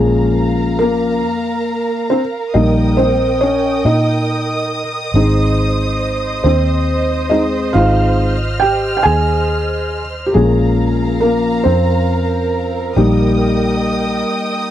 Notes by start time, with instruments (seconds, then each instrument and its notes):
Already playing: fingered electric bass A#1, felt piano F3 G#3 A#3 C#4 G#4, string section A#4 F5 A#5
0.79 felt piano A#3 A#4
1.25 fingered electric bass F2
2.10 felt piano C4 C5
2.54 fingered electric bass A#1, felt piano G3 A#3 D#4 D#5, string section D#5 G5 D#6
2.97 felt piano C4 C5
3.41 felt piano C#4 C#5
3.85 fingered electric bass A#2, felt piano D#4 D#5
5.14 fingered electric bass G#1, felt piano G#3 C4 D#4, string section C5
6.44 fingered electric bass D#2, felt piano C4 C5
7.30 felt piano G#3 C4 D#4 D#5
7.73 fingered electric bass G#1, felt piano G#3 C4 D#4 F4 F5, string section F6
8.60 felt piano G4 G5
8.97 felt piano G5
9.03 fingered electric bass D#2, felt piano G#4 G#5
10.26 felt piano G4
10.34 fingered electric bass A#1, felt piano F3 G#3 A#3 C#4 G#4, string section A#4 F5 A#5
11.21 felt piano A#3 A#4
11.64 fingered electric bass F2, felt piano C4 C5
12.95 fingered electric bass A#1, felt piano G3 A#3 D#4 G4, string section D#5 G5 D#6